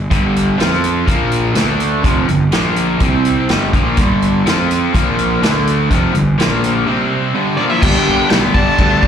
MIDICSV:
0, 0, Header, 1, 7, 480
1, 0, Start_track
1, 0, Tempo, 481928
1, 112, Time_signature, 4, 2, 24, 8
1, 9039, End_track
2, 0, Start_track
2, 0, Title_t, "Lead electric guitar"
2, 0, Program_c, 0, 29
2, 7542, Note_on_c, 0, 74, 80
2, 7592, Note_off_c, 0, 74, 0
2, 7666, Note_on_c, 0, 76, 81
2, 7787, Note_off_c, 0, 76, 0
2, 7787, Note_on_c, 0, 79, 96
2, 8254, Note_off_c, 0, 79, 0
2, 8266, Note_on_c, 0, 79, 97
2, 8331, Note_off_c, 0, 79, 0
2, 8511, Note_on_c, 0, 81, 116
2, 9039, Note_off_c, 0, 81, 0
2, 9039, End_track
3, 0, Start_track
3, 0, Title_t, "Overdriven electric guitar"
3, 0, Program_c, 1, 29
3, 105, Note_on_c, 1, 43, 78
3, 112, Note_on_c, 1, 50, 77
3, 118, Note_on_c, 1, 55, 85
3, 572, Note_off_c, 1, 50, 0
3, 576, Note_on_c, 1, 53, 80
3, 581, Note_off_c, 1, 43, 0
3, 582, Note_off_c, 1, 55, 0
3, 586, Note_on_c, 1, 60, 86
3, 587, Note_on_c, 1, 65, 94
3, 1057, Note_off_c, 1, 53, 0
3, 1062, Note_off_c, 1, 60, 0
3, 1062, Note_off_c, 1, 65, 0
3, 1069, Note_on_c, 1, 46, 74
3, 1076, Note_on_c, 1, 53, 81
3, 1077, Note_on_c, 1, 58, 90
3, 1553, Note_off_c, 1, 46, 0
3, 1553, Note_on_c, 1, 50, 87
3, 1559, Note_off_c, 1, 53, 0
3, 1559, Note_on_c, 1, 57, 84
3, 1562, Note_off_c, 1, 58, 0
3, 1562, Note_on_c, 1, 62, 98
3, 2026, Note_off_c, 1, 50, 0
3, 2029, Note_off_c, 1, 57, 0
3, 2030, Note_off_c, 1, 62, 0
3, 2035, Note_on_c, 1, 41, 83
3, 2042, Note_on_c, 1, 48, 82
3, 2044, Note_on_c, 1, 53, 90
3, 2267, Note_off_c, 1, 41, 0
3, 2271, Note_off_c, 1, 48, 0
3, 2271, Note_off_c, 1, 53, 0
3, 2272, Note_on_c, 1, 43, 56
3, 2280, Note_on_c, 1, 50, 63
3, 2465, Note_off_c, 1, 43, 0
3, 2469, Note_off_c, 1, 50, 0
3, 2509, Note_on_c, 1, 46, 78
3, 2516, Note_on_c, 1, 53, 92
3, 2520, Note_on_c, 1, 58, 101
3, 2985, Note_off_c, 1, 46, 0
3, 2988, Note_off_c, 1, 53, 0
3, 2990, Note_off_c, 1, 58, 0
3, 3010, Note_on_c, 1, 48, 89
3, 3015, Note_on_c, 1, 55, 83
3, 3020, Note_on_c, 1, 60, 99
3, 3474, Note_off_c, 1, 55, 0
3, 3474, Note_on_c, 1, 43, 84
3, 3475, Note_off_c, 1, 48, 0
3, 3480, Note_off_c, 1, 60, 0
3, 3483, Note_on_c, 1, 50, 89
3, 3486, Note_on_c, 1, 55, 95
3, 3708, Note_off_c, 1, 43, 0
3, 3712, Note_off_c, 1, 50, 0
3, 3713, Note_off_c, 1, 55, 0
3, 3717, Note_on_c, 1, 46, 87
3, 3722, Note_on_c, 1, 53, 84
3, 3728, Note_on_c, 1, 58, 96
3, 3949, Note_off_c, 1, 46, 0
3, 3951, Note_off_c, 1, 53, 0
3, 3951, Note_on_c, 1, 43, 79
3, 3954, Note_off_c, 1, 58, 0
3, 3959, Note_on_c, 1, 50, 85
3, 3965, Note_on_c, 1, 55, 93
3, 4427, Note_off_c, 1, 43, 0
3, 4430, Note_off_c, 1, 50, 0
3, 4433, Note_off_c, 1, 55, 0
3, 4437, Note_on_c, 1, 53, 86
3, 4449, Note_on_c, 1, 60, 85
3, 4453, Note_on_c, 1, 65, 84
3, 4910, Note_off_c, 1, 53, 0
3, 4916, Note_off_c, 1, 60, 0
3, 4918, Note_off_c, 1, 65, 0
3, 4934, Note_on_c, 1, 46, 80
3, 4935, Note_on_c, 1, 53, 91
3, 4940, Note_on_c, 1, 58, 94
3, 5395, Note_off_c, 1, 46, 0
3, 5399, Note_off_c, 1, 53, 0
3, 5399, Note_on_c, 1, 50, 79
3, 5402, Note_off_c, 1, 58, 0
3, 5405, Note_on_c, 1, 57, 94
3, 5410, Note_on_c, 1, 62, 95
3, 5871, Note_off_c, 1, 50, 0
3, 5874, Note_off_c, 1, 57, 0
3, 5876, Note_off_c, 1, 62, 0
3, 5879, Note_on_c, 1, 41, 88
3, 5883, Note_on_c, 1, 48, 90
3, 5887, Note_on_c, 1, 53, 94
3, 6111, Note_off_c, 1, 41, 0
3, 6113, Note_off_c, 1, 48, 0
3, 6115, Note_off_c, 1, 53, 0
3, 6122, Note_on_c, 1, 43, 52
3, 6124, Note_on_c, 1, 50, 60
3, 6312, Note_off_c, 1, 43, 0
3, 6312, Note_off_c, 1, 50, 0
3, 6355, Note_on_c, 1, 46, 87
3, 6361, Note_on_c, 1, 53, 88
3, 6365, Note_on_c, 1, 58, 94
3, 6829, Note_off_c, 1, 46, 0
3, 6832, Note_off_c, 1, 53, 0
3, 6834, Note_off_c, 1, 58, 0
3, 6836, Note_on_c, 1, 48, 82
3, 6839, Note_on_c, 1, 55, 90
3, 6843, Note_on_c, 1, 60, 93
3, 7304, Note_off_c, 1, 55, 0
3, 7309, Note_off_c, 1, 48, 0
3, 7311, Note_on_c, 1, 43, 80
3, 7313, Note_off_c, 1, 60, 0
3, 7314, Note_on_c, 1, 50, 90
3, 7316, Note_on_c, 1, 55, 89
3, 7546, Note_off_c, 1, 43, 0
3, 7546, Note_off_c, 1, 50, 0
3, 7549, Note_off_c, 1, 55, 0
3, 7550, Note_on_c, 1, 46, 78
3, 7556, Note_on_c, 1, 53, 81
3, 7556, Note_on_c, 1, 58, 84
3, 7786, Note_off_c, 1, 46, 0
3, 7788, Note_off_c, 1, 53, 0
3, 7788, Note_on_c, 1, 43, 100
3, 7789, Note_off_c, 1, 58, 0
3, 7793, Note_on_c, 1, 50, 91
3, 7799, Note_on_c, 1, 55, 102
3, 7803, Note_on_c, 1, 59, 96
3, 7812, Note_on_c, 1, 62, 105
3, 8015, Note_off_c, 1, 62, 0
3, 8026, Note_off_c, 1, 59, 0
3, 8027, Note_on_c, 1, 62, 69
3, 8038, Note_on_c, 1, 59, 62
3, 8047, Note_off_c, 1, 55, 0
3, 8051, Note_on_c, 1, 55, 59
3, 8243, Note_off_c, 1, 43, 0
3, 8255, Note_off_c, 1, 50, 0
3, 8255, Note_on_c, 1, 43, 101
3, 8264, Note_off_c, 1, 59, 0
3, 8266, Note_off_c, 1, 55, 0
3, 8267, Note_on_c, 1, 50, 86
3, 8268, Note_off_c, 1, 62, 0
3, 8270, Note_on_c, 1, 55, 93
3, 8276, Note_on_c, 1, 59, 102
3, 8280, Note_on_c, 1, 62, 102
3, 8496, Note_off_c, 1, 62, 0
3, 8508, Note_on_c, 1, 62, 70
3, 8509, Note_off_c, 1, 59, 0
3, 8521, Note_on_c, 1, 59, 64
3, 8528, Note_off_c, 1, 55, 0
3, 8532, Note_on_c, 1, 55, 57
3, 8727, Note_off_c, 1, 50, 0
3, 8738, Note_off_c, 1, 55, 0
3, 8739, Note_on_c, 1, 50, 74
3, 8744, Note_off_c, 1, 43, 0
3, 8745, Note_off_c, 1, 59, 0
3, 8747, Note_off_c, 1, 62, 0
3, 8749, Note_on_c, 1, 55, 81
3, 8757, Note_on_c, 1, 59, 82
3, 8759, Note_on_c, 1, 62, 94
3, 8975, Note_off_c, 1, 62, 0
3, 8984, Note_off_c, 1, 59, 0
3, 8987, Note_on_c, 1, 62, 99
3, 8989, Note_off_c, 1, 50, 0
3, 8989, Note_off_c, 1, 55, 0
3, 8995, Note_on_c, 1, 59, 86
3, 9001, Note_on_c, 1, 50, 88
3, 9001, Note_on_c, 1, 55, 94
3, 9008, Note_on_c, 1, 43, 78
3, 9039, Note_off_c, 1, 43, 0
3, 9039, Note_off_c, 1, 50, 0
3, 9039, Note_off_c, 1, 55, 0
3, 9039, Note_off_c, 1, 59, 0
3, 9039, Note_off_c, 1, 62, 0
3, 9039, End_track
4, 0, Start_track
4, 0, Title_t, "Lead electric guitar"
4, 0, Program_c, 2, 29
4, 7565, Note_on_c, 2, 50, 64
4, 7615, Note_off_c, 2, 50, 0
4, 7685, Note_on_c, 2, 52, 70
4, 7801, Note_off_c, 2, 52, 0
4, 9039, End_track
5, 0, Start_track
5, 0, Title_t, "Overdriven electric guitar"
5, 0, Program_c, 3, 29
5, 8517, Note_on_c, 3, 50, 74
5, 8527, Note_on_c, 3, 43, 75
5, 9039, Note_off_c, 3, 43, 0
5, 9039, Note_off_c, 3, 50, 0
5, 9039, End_track
6, 0, Start_track
6, 0, Title_t, "Fingered electric bass"
6, 0, Program_c, 4, 33
6, 112, Note_on_c, 4, 31, 88
6, 558, Note_off_c, 4, 31, 0
6, 600, Note_on_c, 4, 41, 84
6, 1043, Note_off_c, 4, 41, 0
6, 1075, Note_on_c, 4, 34, 86
6, 1520, Note_off_c, 4, 34, 0
6, 1555, Note_on_c, 4, 38, 88
6, 2001, Note_off_c, 4, 38, 0
6, 2035, Note_on_c, 4, 29, 83
6, 2258, Note_off_c, 4, 29, 0
6, 2283, Note_on_c, 4, 31, 77
6, 2502, Note_off_c, 4, 31, 0
6, 2524, Note_on_c, 4, 34, 83
6, 2966, Note_off_c, 4, 34, 0
6, 2995, Note_on_c, 4, 36, 84
6, 3442, Note_off_c, 4, 36, 0
6, 3481, Note_on_c, 4, 31, 82
6, 3702, Note_off_c, 4, 31, 0
6, 3719, Note_on_c, 4, 34, 85
6, 3940, Note_off_c, 4, 34, 0
6, 3965, Note_on_c, 4, 31, 87
6, 4407, Note_off_c, 4, 31, 0
6, 4438, Note_on_c, 4, 41, 80
6, 4884, Note_off_c, 4, 41, 0
6, 4930, Note_on_c, 4, 34, 90
6, 5371, Note_off_c, 4, 34, 0
6, 5403, Note_on_c, 4, 38, 91
6, 5847, Note_off_c, 4, 38, 0
6, 5887, Note_on_c, 4, 29, 84
6, 6105, Note_off_c, 4, 29, 0
6, 6119, Note_on_c, 4, 31, 77
6, 6341, Note_off_c, 4, 31, 0
6, 6362, Note_on_c, 4, 34, 80
6, 6806, Note_off_c, 4, 34, 0
6, 7796, Note_on_c, 4, 31, 99
6, 7893, Note_off_c, 4, 31, 0
6, 8042, Note_on_c, 4, 31, 89
6, 8136, Note_off_c, 4, 31, 0
6, 8279, Note_on_c, 4, 35, 103
6, 8374, Note_off_c, 4, 35, 0
6, 8514, Note_on_c, 4, 31, 98
6, 8611, Note_off_c, 4, 31, 0
6, 8755, Note_on_c, 4, 38, 98
6, 9039, Note_off_c, 4, 38, 0
6, 9039, End_track
7, 0, Start_track
7, 0, Title_t, "Drums"
7, 111, Note_on_c, 9, 36, 95
7, 111, Note_on_c, 9, 42, 76
7, 211, Note_off_c, 9, 36, 0
7, 211, Note_off_c, 9, 42, 0
7, 362, Note_on_c, 9, 42, 54
7, 462, Note_off_c, 9, 42, 0
7, 598, Note_on_c, 9, 42, 84
7, 609, Note_on_c, 9, 38, 110
7, 698, Note_off_c, 9, 42, 0
7, 709, Note_off_c, 9, 38, 0
7, 729, Note_on_c, 9, 38, 29
7, 828, Note_off_c, 9, 38, 0
7, 834, Note_on_c, 9, 42, 58
7, 933, Note_off_c, 9, 42, 0
7, 1072, Note_on_c, 9, 36, 96
7, 1075, Note_on_c, 9, 42, 80
7, 1172, Note_off_c, 9, 36, 0
7, 1175, Note_off_c, 9, 42, 0
7, 1310, Note_on_c, 9, 42, 59
7, 1409, Note_off_c, 9, 42, 0
7, 1545, Note_on_c, 9, 42, 79
7, 1556, Note_on_c, 9, 38, 94
7, 1645, Note_off_c, 9, 42, 0
7, 1656, Note_off_c, 9, 38, 0
7, 1793, Note_on_c, 9, 42, 56
7, 1892, Note_off_c, 9, 42, 0
7, 2034, Note_on_c, 9, 36, 102
7, 2034, Note_on_c, 9, 42, 78
7, 2133, Note_off_c, 9, 36, 0
7, 2134, Note_off_c, 9, 42, 0
7, 2276, Note_on_c, 9, 42, 51
7, 2375, Note_off_c, 9, 42, 0
7, 2509, Note_on_c, 9, 42, 73
7, 2520, Note_on_c, 9, 38, 102
7, 2609, Note_off_c, 9, 42, 0
7, 2620, Note_off_c, 9, 38, 0
7, 2751, Note_on_c, 9, 42, 54
7, 2851, Note_off_c, 9, 42, 0
7, 2989, Note_on_c, 9, 42, 71
7, 2995, Note_on_c, 9, 36, 93
7, 3089, Note_off_c, 9, 42, 0
7, 3094, Note_off_c, 9, 36, 0
7, 3236, Note_on_c, 9, 42, 53
7, 3335, Note_off_c, 9, 42, 0
7, 3475, Note_on_c, 9, 42, 70
7, 3486, Note_on_c, 9, 38, 100
7, 3574, Note_off_c, 9, 42, 0
7, 3585, Note_off_c, 9, 38, 0
7, 3719, Note_on_c, 9, 36, 95
7, 3722, Note_on_c, 9, 42, 57
7, 3819, Note_off_c, 9, 36, 0
7, 3822, Note_off_c, 9, 42, 0
7, 3953, Note_on_c, 9, 42, 77
7, 3959, Note_on_c, 9, 36, 96
7, 4053, Note_off_c, 9, 42, 0
7, 4059, Note_off_c, 9, 36, 0
7, 4205, Note_on_c, 9, 42, 52
7, 4305, Note_off_c, 9, 42, 0
7, 4448, Note_on_c, 9, 42, 81
7, 4459, Note_on_c, 9, 38, 110
7, 4547, Note_off_c, 9, 42, 0
7, 4558, Note_off_c, 9, 38, 0
7, 4688, Note_on_c, 9, 42, 59
7, 4788, Note_off_c, 9, 42, 0
7, 4925, Note_on_c, 9, 36, 98
7, 4931, Note_on_c, 9, 42, 81
7, 5025, Note_off_c, 9, 36, 0
7, 5031, Note_off_c, 9, 42, 0
7, 5165, Note_on_c, 9, 42, 57
7, 5264, Note_off_c, 9, 42, 0
7, 5411, Note_on_c, 9, 42, 82
7, 5422, Note_on_c, 9, 38, 99
7, 5510, Note_off_c, 9, 42, 0
7, 5521, Note_off_c, 9, 38, 0
7, 5651, Note_on_c, 9, 42, 59
7, 5750, Note_off_c, 9, 42, 0
7, 5884, Note_on_c, 9, 36, 97
7, 5888, Note_on_c, 9, 42, 77
7, 5984, Note_off_c, 9, 36, 0
7, 5987, Note_off_c, 9, 42, 0
7, 6122, Note_on_c, 9, 42, 49
7, 6222, Note_off_c, 9, 42, 0
7, 6370, Note_on_c, 9, 42, 78
7, 6381, Note_on_c, 9, 38, 105
7, 6470, Note_off_c, 9, 42, 0
7, 6481, Note_off_c, 9, 38, 0
7, 6610, Note_on_c, 9, 42, 57
7, 6710, Note_off_c, 9, 42, 0
7, 7794, Note_on_c, 9, 36, 115
7, 7797, Note_on_c, 9, 49, 116
7, 7797, Note_on_c, 9, 57, 67
7, 7894, Note_off_c, 9, 36, 0
7, 7896, Note_off_c, 9, 49, 0
7, 7896, Note_off_c, 9, 57, 0
7, 8267, Note_on_c, 9, 57, 73
7, 8278, Note_on_c, 9, 38, 118
7, 8367, Note_off_c, 9, 57, 0
7, 8378, Note_off_c, 9, 38, 0
7, 8511, Note_on_c, 9, 36, 83
7, 8611, Note_off_c, 9, 36, 0
7, 8748, Note_on_c, 9, 57, 68
7, 8752, Note_on_c, 9, 36, 88
7, 8848, Note_off_c, 9, 57, 0
7, 8851, Note_off_c, 9, 36, 0
7, 8992, Note_on_c, 9, 36, 81
7, 9039, Note_off_c, 9, 36, 0
7, 9039, End_track
0, 0, End_of_file